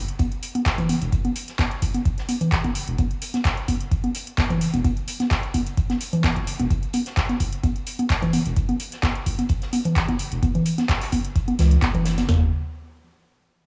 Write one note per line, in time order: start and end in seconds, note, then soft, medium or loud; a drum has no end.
0.08 closed hi-hat medium
0.19 kick loud
0.19 closed hi-hat medium
0.19 high conga medium
0.32 closed hi-hat soft
0.43 closed hi-hat medium
0.43 open hi-hat loud
0.55 closed hi-hat medium
0.55 high conga medium
0.66 kick loud
0.66 snare loud
0.66 clap loud
0.66 closed hi-hat medium
0.78 0.86 F#1 medium
0.78 kick medium
0.78 closed hi-hat soft
0.78 low conga medium
0.89 closed hi-hat medium
0.89 open hi-hat loud
0.89 high conga medium
1.01 1.10 E1 medium
1.01 closed hi-hat soft
1.01 closed hi-hat medium
1.12 1.21 F#1 loud
1.12 kick loud
1.12 closed hi-hat medium
1.25 closed hi-hat soft
1.25 high conga medium
1.36 closed hi-hat medium
1.36 open hi-hat loud
1.48 snare soft
1.48 closed hi-hat medium
1.59 kick loud
1.59 snare loud
1.59 clap loud
1.59 closed hi-hat medium
1.59 high conga medium
1.71 closed hi-hat soft
1.82 1.91 F#1 medium
1.82 kick medium
1.82 closed hi-hat medium
1.82 open hi-hat loud
1.94 closed hi-hat soft
1.94 closed hi-hat medium
1.94 high conga medium
2.05 kick loud
2.05 closed hi-hat soft
2.05 closed hi-hat medium
2.18 snare medium
2.18 closed hi-hat soft
2.29 closed hi-hat medium
2.29 open hi-hat loud
2.29 high conga medium
2.41 closed hi-hat medium
2.41 closed hi-hat soft
2.41 low conga medium
2.52 kick loud
2.52 snare loud
2.52 clap loud
2.52 closed hi-hat medium
2.64 2.72 F#1 loud
2.64 kick medium
2.64 closed hi-hat soft
2.64 high conga medium
2.75 closed hi-hat medium
2.75 open hi-hat loud
2.88 2.96 E1 medium
2.88 closed hi-hat soft
2.98 3.07 F#1 loud
2.98 kick loud
2.98 closed hi-hat medium
2.98 high conga medium
3.11 closed hi-hat soft
3.22 closed hi-hat medium
3.22 open hi-hat loud
3.34 snare soft
3.34 closed hi-hat medium
3.34 high conga medium
3.45 kick loud
3.45 snare loud
3.45 clap loud
3.45 closed hi-hat medium
3.45 closed hi-hat loud
3.57 closed hi-hat soft
3.68 3.77 F#1 medium
3.68 kick medium
3.68 closed hi-hat medium
3.68 open hi-hat loud
3.68 high conga medium
3.81 closed hi-hat soft
3.92 kick loud
3.92 closed hi-hat medium
4.04 closed hi-hat soft
4.04 high conga medium
4.15 closed hi-hat medium
4.15 open hi-hat loud
4.27 closed hi-hat soft
4.38 kick loud
4.38 snare loud
4.38 clap loud
4.38 closed hi-hat medium
4.38 high conga medium
4.50 4.58 F#1 loud
4.50 kick medium
4.50 closed hi-hat soft
4.50 low conga loud
4.61 closed hi-hat medium
4.61 open hi-hat loud
4.74 4.82 E1 medium
4.74 closed hi-hat soft
4.74 high conga medium
4.84 4.94 F#1 loud
4.84 kick loud
4.84 closed hi-hat medium
4.84 high conga medium
4.97 closed hi-hat soft
5.08 closed hi-hat medium
5.08 open hi-hat loud
5.20 snare soft
5.20 closed hi-hat medium
5.20 high conga medium
5.30 kick loud
5.30 snare loud
5.30 clap loud
5.30 closed hi-hat medium
5.43 closed hi-hat soft
5.54 5.63 F#1 medium
5.54 kick medium
5.54 closed hi-hat medium
5.54 open hi-hat loud
5.54 high conga medium
5.66 closed hi-hat soft
5.66 closed hi-hat medium
5.77 kick loud
5.77 closed hi-hat medium
5.90 snare soft
5.90 closed hi-hat soft
5.90 high conga medium
6.01 closed hi-hat medium
6.01 open hi-hat loud
6.13 closed hi-hat medium
6.13 closed hi-hat soft
6.13 low conga medium
6.24 kick loud
6.24 snare loud
6.24 clap loud
6.24 closed hi-hat medium
6.24 high conga medium
6.36 6.44 F#1 loud
6.36 kick medium
6.36 closed hi-hat soft
6.47 closed hi-hat medium
6.47 open hi-hat loud
6.59 6.68 E1 medium
6.59 closed hi-hat soft
6.59 high conga medium
6.70 6.80 F#1 loud
6.70 kick loud
6.70 closed hi-hat medium
6.83 closed hi-hat soft
6.93 closed hi-hat medium
6.93 open hi-hat loud
6.93 high conga medium
7.06 snare medium
7.06 closed hi-hat medium
7.17 kick loud
7.17 snare loud
7.17 clap loud
7.17 closed hi-hat medium
7.29 closed hi-hat soft
7.29 high conga medium
7.40 7.49 F#1 medium
7.40 kick medium
7.40 closed hi-hat medium
7.40 open hi-hat loud
7.53 closed hi-hat medium
7.63 kick loud
7.63 closed hi-hat medium
7.63 high conga medium
7.76 closed hi-hat soft
7.87 closed hi-hat medium
7.87 open hi-hat loud
7.99 closed hi-hat medium
7.99 high conga medium
8.10 kick loud
8.10 snare loud
8.10 clap loud
8.10 closed hi-hat medium
8.10 closed hi-hat loud
8.22 8.30 F#1 loud
8.22 kick medium
8.22 closed hi-hat soft
8.22 low conga loud
8.33 closed hi-hat medium
8.33 open hi-hat loud
8.33 high conga medium
8.46 8.54 E1 medium
8.46 closed hi-hat medium
8.46 closed hi-hat soft
8.56 8.66 F#1 loud
8.56 kick loud
8.56 closed hi-hat medium
8.69 closed hi-hat soft
8.69 high conga medium
8.80 closed hi-hat medium
8.80 open hi-hat loud
8.92 snare soft
8.92 closed hi-hat medium
9.03 kick loud
9.03 snare loud
9.03 clap loud
9.03 closed hi-hat medium
9.03 high conga medium
9.15 closed hi-hat soft
9.26 9.35 F#1 medium
9.26 kick medium
9.26 closed hi-hat medium
9.26 open hi-hat loud
9.39 closed hi-hat medium
9.39 closed hi-hat soft
9.39 high conga medium
9.49 kick loud
9.49 closed hi-hat medium
9.62 snare soft
9.62 closed hi-hat soft
9.73 closed hi-hat medium
9.73 open hi-hat loud
9.73 high conga medium
9.85 closed hi-hat soft
9.85 closed hi-hat medium
9.85 low conga medium
9.96 kick loud
9.96 snare loud
9.96 clap loud
9.96 closed hi-hat medium
10.08 10.16 F#1 loud
10.08 kick medium
10.08 closed hi-hat soft
10.08 high conga medium
10.19 closed hi-hat medium
10.19 open hi-hat loud
10.32 10.40 E1 medium
10.32 closed hi-hat medium
10.43 10.52 F#1 loud
10.43 kick loud
10.43 closed hi-hat medium
10.43 high conga medium
10.55 closed hi-hat soft
10.55 low conga medium
10.65 closed hi-hat medium
10.65 open hi-hat loud
10.78 snare soft
10.78 closed hi-hat medium
10.78 high conga medium
10.89 kick loud
10.89 snare loud
10.89 clap loud
10.89 closed hi-hat medium
11.01 clap soft
11.01 open hi-hat medium
11.12 11.21 F#1 medium
11.12 kick medium
11.12 closed hi-hat medium
11.12 open hi-hat loud
11.12 high conga medium
11.25 closed hi-hat medium
11.36 kick loud
11.36 closed hi-hat medium
11.48 closed hi-hat soft
11.48 high conga medium
11.59 11.76 C#2 loud
11.59 snare loud
11.59 closed hi-hat medium
11.59 open hi-hat loud
11.59 low conga medium
11.71 closed hi-hat medium
11.82 12.24 F#1 medium
11.82 kick loud
11.82 snare loud
11.82 clap loud
11.82 closed hi-hat medium
11.82 high conga medium
11.94 kick medium
11.94 closed hi-hat soft
11.94 low conga medium
12.05 snare loud
12.05 closed hi-hat medium
12.05 open hi-hat loud
12.18 snare loud
12.18 closed hi-hat medium
12.18 high conga medium
12.29 12.50 F#1 loud
12.29 snare loud
12.29 floor tom loud